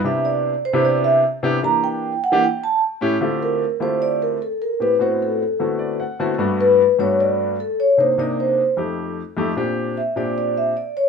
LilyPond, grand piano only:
\new Staff \with { instrumentName = "Grand piano" } { \time 4/4 \key c \mixolydian \tempo 4 = 151 << { r1 | r1 | r1 | r2 r8 d''8 fis''8 a''8 |
r1 | r1 | r1 | } \\ { <c b d' e' g'>4~ <c b d' e' g'>16 r8 <c b d' e' g'>4~ <c b d' e' g'>16 r8 <c b d' e' g'>16 r16 | <e bes d' g'>4~ <e bes d' g'>16 r8 <e bes d' g'>16 r4. <a, cis' e' g'>16 r16 | <d a c' e' f' g'>4 r8 <d a c' e' f' g'>4. r4 | <a, b c' g'>16 r16 <a, b c' fis'>4 r8 <d a b c' e' fis'>4 r8 <d a b c' e' fis'>16 r16 |
<g, a b d' fis'>4 r8 <g, a b d' fis'>4. r4 | <c bes d' ees'>16 r16 <c bes d' ees'>4 r8 <f, a ees' g'>4 r8 <f, a ees' g'>16 r16 | <bes, c' d' g'>4 r8 <bes, c' d' g'>4. r4 | } >> }